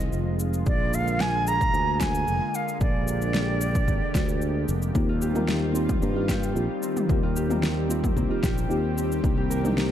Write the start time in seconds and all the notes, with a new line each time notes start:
Already playing: D#3 G#3 C4 F4 D#5
0.00 shaker
0.13 F1, shaker
0.40 shaker
0.54 shaker
0.66 A#1 D3 A#3 D5, kick, shaker
0.94 F5, shaker
1.08 shaker
1.20 G#5, snare, shaker
1.47 A#5, shaker
1.61 kick, shaker
1.74 D2, shaker
1.94 A#5
2.01 G#5, kick, snare, shaker
2.15 shaker
2.28 F1, shaker
2.55 F5, shaker
2.68 shaker
2.80 A#1 G4 D5, kick, shaker
3.08 shaker
3.22 shaker
3.34 snare, shaker
3.61 shaker
3.75 kick, shaker
3.88 G#1, kick, shaker
4.15 D2, kick, snare, shaker
4.29 shaker
4.42 shaker
4.68 F1, shaker
4.82 shaker
4.93 D#2 D#3 G3 A#3 C4 D#4 F4 G4, kick, shaker
5.09 F4
5.22 G4, shaker
5.34 A#3 C4 D#4 F4 A#4, mid tom, shaker
5.48 snare, shaker
5.72 A#3 C4 D#4 F4 G4, shaker
5.89 kick, mid tom, shaker
6.02 G2 A#3, shaker
6.14 A#3 C4 D#4 F4 G4
6.29 G4, kick, snare, shaker
6.43 shaker
6.53 A#1 A#3 C4 D#4 F4 G4, shaker
6.83 C4, shaker
6.96 mid tom, shaker
7.08 D#2 A#3 C4 D#4 F4 G4, kick, shaker
7.23 F4
7.36 G4, shaker
7.49 A#3 C4 D#4 F4 A#4, mid tom, shaker
7.63 snare, shaker
7.89 A#3 C4 D#4 F4 G4, shaker
8.04 kick, mid tom, shaker
8.16 C2 A#3, kick, shaker
8.28 A#3 C4 D#4 F4 G4
8.43 A#1 G4, kick, snare, shaker
8.58 shaker
8.68 D#2 A#3 C4 D#4 F4 G4, shaker
8.97 C4, shaker
9.12 shaker
9.22 C2 D#3 A#3 C4 D4 D#4 G4, kick, shaker
9.37 G4
9.50 A#4, shaker
9.63 A#3 C4 D4 D#4 A#4, mid tom, shaker
9.78 snare, shaker